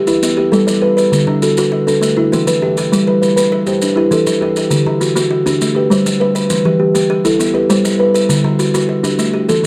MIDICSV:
0, 0, Header, 1, 4, 480
1, 0, Start_track
1, 0, Key_signature, 1, "major"
1, 0, Tempo, 298805
1, 1812, Time_signature, 12, 3, 24, 8
1, 15527, End_track
2, 0, Start_track
2, 0, Title_t, "Kalimba"
2, 0, Program_c, 0, 108
2, 0, Note_on_c, 0, 67, 73
2, 129, Note_on_c, 0, 71, 60
2, 368, Note_on_c, 0, 59, 79
2, 371, Note_off_c, 0, 67, 0
2, 594, Note_on_c, 0, 67, 62
2, 609, Note_off_c, 0, 59, 0
2, 832, Note_on_c, 0, 69, 60
2, 850, Note_off_c, 0, 71, 0
2, 1074, Note_on_c, 0, 55, 70
2, 1291, Note_off_c, 0, 67, 0
2, 1310, Note_on_c, 0, 67, 65
2, 1556, Note_on_c, 0, 71, 77
2, 1562, Note_off_c, 0, 69, 0
2, 1563, Note_off_c, 0, 55, 0
2, 2041, Note_off_c, 0, 67, 0
2, 2041, Note_on_c, 0, 62, 62
2, 2043, Note_on_c, 0, 50, 75
2, 2044, Note_off_c, 0, 71, 0
2, 2287, Note_on_c, 0, 69, 65
2, 2528, Note_off_c, 0, 50, 0
2, 2760, Note_on_c, 0, 66, 79
2, 2767, Note_off_c, 0, 62, 0
2, 2984, Note_off_c, 0, 69, 0
2, 3003, Note_on_c, 0, 69, 58
2, 3237, Note_on_c, 0, 57, 73
2, 3247, Note_off_c, 0, 66, 0
2, 3482, Note_on_c, 0, 64, 65
2, 3485, Note_off_c, 0, 57, 0
2, 3728, Note_off_c, 0, 69, 0
2, 3730, Note_on_c, 0, 66, 66
2, 3969, Note_on_c, 0, 52, 74
2, 4194, Note_off_c, 0, 64, 0
2, 4213, Note_on_c, 0, 64, 66
2, 4451, Note_off_c, 0, 52, 0
2, 4452, Note_off_c, 0, 66, 0
2, 4458, Note_on_c, 0, 67, 77
2, 4933, Note_off_c, 0, 64, 0
2, 4936, Note_off_c, 0, 67, 0
2, 4937, Note_on_c, 0, 55, 69
2, 4940, Note_on_c, 0, 71, 68
2, 5415, Note_off_c, 0, 55, 0
2, 5638, Note_off_c, 0, 71, 0
2, 5658, Note_on_c, 0, 71, 81
2, 5907, Note_on_c, 0, 72, 64
2, 6135, Note_off_c, 0, 71, 0
2, 6145, Note_on_c, 0, 62, 70
2, 6379, Note_off_c, 0, 62, 0
2, 6379, Note_on_c, 0, 67, 69
2, 6619, Note_off_c, 0, 72, 0
2, 6625, Note_on_c, 0, 69, 66
2, 6856, Note_on_c, 0, 52, 76
2, 7086, Note_off_c, 0, 67, 0
2, 7105, Note_on_c, 0, 67, 72
2, 7325, Note_off_c, 0, 67, 0
2, 7334, Note_off_c, 0, 52, 0
2, 7338, Note_off_c, 0, 69, 0
2, 7345, Note_on_c, 0, 67, 72
2, 7814, Note_on_c, 0, 50, 74
2, 7815, Note_on_c, 0, 66, 63
2, 7818, Note_off_c, 0, 67, 0
2, 8292, Note_off_c, 0, 50, 0
2, 8505, Note_off_c, 0, 66, 0
2, 8524, Note_on_c, 0, 66, 80
2, 8770, Note_on_c, 0, 67, 63
2, 9007, Note_off_c, 0, 66, 0
2, 9022, Note_on_c, 0, 57, 74
2, 9256, Note_off_c, 0, 57, 0
2, 9258, Note_on_c, 0, 71, 63
2, 9489, Note_off_c, 0, 67, 0
2, 9502, Note_on_c, 0, 72, 68
2, 9739, Note_on_c, 0, 55, 76
2, 9959, Note_off_c, 0, 71, 0
2, 9978, Note_on_c, 0, 71, 70
2, 10182, Note_off_c, 0, 71, 0
2, 10201, Note_on_c, 0, 71, 81
2, 10213, Note_off_c, 0, 55, 0
2, 10215, Note_off_c, 0, 72, 0
2, 10684, Note_off_c, 0, 71, 0
2, 10688, Note_on_c, 0, 52, 81
2, 10689, Note_on_c, 0, 67, 69
2, 11168, Note_off_c, 0, 52, 0
2, 11385, Note_off_c, 0, 67, 0
2, 11404, Note_on_c, 0, 67, 88
2, 11649, Note_on_c, 0, 69, 59
2, 11880, Note_on_c, 0, 59, 73
2, 11886, Note_off_c, 0, 67, 0
2, 12123, Note_off_c, 0, 59, 0
2, 12123, Note_on_c, 0, 71, 66
2, 12368, Note_off_c, 0, 69, 0
2, 12370, Note_on_c, 0, 72, 70
2, 12605, Note_on_c, 0, 55, 75
2, 12819, Note_off_c, 0, 71, 0
2, 12839, Note_on_c, 0, 71, 64
2, 13064, Note_off_c, 0, 71, 0
2, 13083, Note_on_c, 0, 71, 75
2, 13086, Note_off_c, 0, 55, 0
2, 13088, Note_off_c, 0, 72, 0
2, 13561, Note_on_c, 0, 50, 73
2, 13565, Note_off_c, 0, 71, 0
2, 13566, Note_on_c, 0, 66, 65
2, 14043, Note_off_c, 0, 50, 0
2, 14260, Note_off_c, 0, 66, 0
2, 14279, Note_on_c, 0, 66, 74
2, 14523, Note_on_c, 0, 67, 63
2, 14758, Note_on_c, 0, 57, 76
2, 14762, Note_off_c, 0, 66, 0
2, 14978, Note_off_c, 0, 67, 0
2, 14997, Note_on_c, 0, 67, 66
2, 15002, Note_off_c, 0, 57, 0
2, 15241, Note_on_c, 0, 69, 70
2, 15479, Note_on_c, 0, 52, 68
2, 15527, Note_off_c, 0, 52, 0
2, 15527, Note_off_c, 0, 67, 0
2, 15527, Note_off_c, 0, 69, 0
2, 15527, End_track
3, 0, Start_track
3, 0, Title_t, "Kalimba"
3, 0, Program_c, 1, 108
3, 115, Note_on_c, 1, 64, 71
3, 363, Note_off_c, 1, 64, 0
3, 607, Note_on_c, 1, 67, 57
3, 837, Note_on_c, 1, 55, 83
3, 1078, Note_on_c, 1, 74, 63
3, 1319, Note_on_c, 1, 71, 66
3, 1324, Note_off_c, 1, 55, 0
3, 1329, Note_off_c, 1, 67, 0
3, 1795, Note_on_c, 1, 50, 74
3, 1805, Note_off_c, 1, 74, 0
3, 1806, Note_off_c, 1, 71, 0
3, 2283, Note_on_c, 1, 66, 67
3, 2284, Note_off_c, 1, 50, 0
3, 2519, Note_off_c, 1, 66, 0
3, 2539, Note_on_c, 1, 66, 79
3, 3008, Note_on_c, 1, 62, 68
3, 3016, Note_off_c, 1, 66, 0
3, 3251, Note_off_c, 1, 62, 0
3, 3490, Note_on_c, 1, 64, 62
3, 3738, Note_on_c, 1, 52, 86
3, 3971, Note_on_c, 1, 71, 66
3, 4210, Note_on_c, 1, 67, 67
3, 4211, Note_off_c, 1, 64, 0
3, 4216, Note_off_c, 1, 52, 0
3, 4691, Note_off_c, 1, 67, 0
3, 4691, Note_on_c, 1, 55, 83
3, 4692, Note_off_c, 1, 71, 0
3, 5169, Note_on_c, 1, 71, 65
3, 5172, Note_off_c, 1, 55, 0
3, 5387, Note_off_c, 1, 71, 0
3, 5406, Note_on_c, 1, 71, 90
3, 5889, Note_off_c, 1, 71, 0
3, 5890, Note_on_c, 1, 67, 71
3, 6131, Note_off_c, 1, 67, 0
3, 6356, Note_on_c, 1, 64, 64
3, 6601, Note_on_c, 1, 52, 85
3, 7083, Note_on_c, 1, 67, 70
3, 7084, Note_off_c, 1, 64, 0
3, 7086, Note_off_c, 1, 52, 0
3, 7556, Note_on_c, 1, 50, 80
3, 7567, Note_off_c, 1, 67, 0
3, 8042, Note_on_c, 1, 66, 71
3, 8043, Note_off_c, 1, 50, 0
3, 8262, Note_off_c, 1, 66, 0
3, 8281, Note_on_c, 1, 66, 89
3, 8765, Note_off_c, 1, 66, 0
3, 8770, Note_on_c, 1, 62, 80
3, 9010, Note_off_c, 1, 62, 0
3, 9236, Note_on_c, 1, 67, 66
3, 9482, Note_on_c, 1, 55, 86
3, 9962, Note_off_c, 1, 67, 0
3, 9963, Note_on_c, 1, 71, 80
3, 9965, Note_off_c, 1, 55, 0
3, 10445, Note_off_c, 1, 71, 0
3, 10445, Note_on_c, 1, 52, 81
3, 10918, Note_on_c, 1, 67, 73
3, 10926, Note_off_c, 1, 52, 0
3, 11140, Note_off_c, 1, 67, 0
3, 11159, Note_on_c, 1, 67, 82
3, 11641, Note_on_c, 1, 64, 81
3, 11643, Note_off_c, 1, 67, 0
3, 11884, Note_off_c, 1, 64, 0
3, 12108, Note_on_c, 1, 67, 65
3, 12361, Note_on_c, 1, 55, 87
3, 12837, Note_off_c, 1, 67, 0
3, 12844, Note_off_c, 1, 55, 0
3, 12848, Note_on_c, 1, 71, 72
3, 13317, Note_on_c, 1, 50, 77
3, 13327, Note_off_c, 1, 71, 0
3, 13799, Note_on_c, 1, 66, 67
3, 13802, Note_off_c, 1, 50, 0
3, 14024, Note_off_c, 1, 66, 0
3, 14043, Note_on_c, 1, 66, 84
3, 14513, Note_on_c, 1, 62, 72
3, 14525, Note_off_c, 1, 66, 0
3, 14760, Note_off_c, 1, 62, 0
3, 15250, Note_on_c, 1, 52, 78
3, 15527, Note_off_c, 1, 52, 0
3, 15527, End_track
4, 0, Start_track
4, 0, Title_t, "Drums"
4, 116, Note_on_c, 9, 70, 51
4, 277, Note_off_c, 9, 70, 0
4, 367, Note_on_c, 9, 70, 73
4, 528, Note_off_c, 9, 70, 0
4, 854, Note_on_c, 9, 70, 50
4, 1014, Note_off_c, 9, 70, 0
4, 1091, Note_on_c, 9, 70, 63
4, 1251, Note_off_c, 9, 70, 0
4, 1575, Note_on_c, 9, 70, 53
4, 1736, Note_off_c, 9, 70, 0
4, 1815, Note_on_c, 9, 70, 66
4, 1976, Note_off_c, 9, 70, 0
4, 2285, Note_on_c, 9, 70, 53
4, 2446, Note_off_c, 9, 70, 0
4, 2526, Note_on_c, 9, 70, 61
4, 2687, Note_off_c, 9, 70, 0
4, 3020, Note_on_c, 9, 70, 52
4, 3180, Note_off_c, 9, 70, 0
4, 3256, Note_on_c, 9, 70, 70
4, 3417, Note_off_c, 9, 70, 0
4, 3744, Note_on_c, 9, 70, 53
4, 3904, Note_off_c, 9, 70, 0
4, 3974, Note_on_c, 9, 70, 65
4, 4135, Note_off_c, 9, 70, 0
4, 4454, Note_on_c, 9, 70, 57
4, 4615, Note_off_c, 9, 70, 0
4, 4707, Note_on_c, 9, 70, 68
4, 4867, Note_off_c, 9, 70, 0
4, 5187, Note_on_c, 9, 70, 58
4, 5348, Note_off_c, 9, 70, 0
4, 5419, Note_on_c, 9, 70, 79
4, 5580, Note_off_c, 9, 70, 0
4, 5892, Note_on_c, 9, 70, 50
4, 6052, Note_off_c, 9, 70, 0
4, 6133, Note_on_c, 9, 70, 72
4, 6294, Note_off_c, 9, 70, 0
4, 6611, Note_on_c, 9, 70, 55
4, 6772, Note_off_c, 9, 70, 0
4, 6855, Note_on_c, 9, 70, 71
4, 7015, Note_off_c, 9, 70, 0
4, 7330, Note_on_c, 9, 70, 59
4, 7490, Note_off_c, 9, 70, 0
4, 7565, Note_on_c, 9, 70, 68
4, 7725, Note_off_c, 9, 70, 0
4, 8051, Note_on_c, 9, 70, 61
4, 8212, Note_off_c, 9, 70, 0
4, 8295, Note_on_c, 9, 70, 72
4, 8456, Note_off_c, 9, 70, 0
4, 8781, Note_on_c, 9, 70, 50
4, 8942, Note_off_c, 9, 70, 0
4, 9019, Note_on_c, 9, 70, 72
4, 9179, Note_off_c, 9, 70, 0
4, 9502, Note_on_c, 9, 70, 57
4, 9663, Note_off_c, 9, 70, 0
4, 9739, Note_on_c, 9, 70, 66
4, 9900, Note_off_c, 9, 70, 0
4, 10210, Note_on_c, 9, 70, 63
4, 10370, Note_off_c, 9, 70, 0
4, 10442, Note_on_c, 9, 70, 77
4, 10603, Note_off_c, 9, 70, 0
4, 11169, Note_on_c, 9, 70, 72
4, 11330, Note_off_c, 9, 70, 0
4, 11645, Note_on_c, 9, 70, 58
4, 11806, Note_off_c, 9, 70, 0
4, 11892, Note_on_c, 9, 70, 78
4, 12053, Note_off_c, 9, 70, 0
4, 12368, Note_on_c, 9, 70, 66
4, 12529, Note_off_c, 9, 70, 0
4, 12609, Note_on_c, 9, 70, 74
4, 12770, Note_off_c, 9, 70, 0
4, 13096, Note_on_c, 9, 70, 69
4, 13257, Note_off_c, 9, 70, 0
4, 13328, Note_on_c, 9, 70, 77
4, 13488, Note_off_c, 9, 70, 0
4, 13806, Note_on_c, 9, 70, 65
4, 13966, Note_off_c, 9, 70, 0
4, 14047, Note_on_c, 9, 70, 80
4, 14208, Note_off_c, 9, 70, 0
4, 14525, Note_on_c, 9, 70, 64
4, 14686, Note_off_c, 9, 70, 0
4, 14767, Note_on_c, 9, 70, 79
4, 14927, Note_off_c, 9, 70, 0
4, 15247, Note_on_c, 9, 70, 61
4, 15408, Note_off_c, 9, 70, 0
4, 15527, End_track
0, 0, End_of_file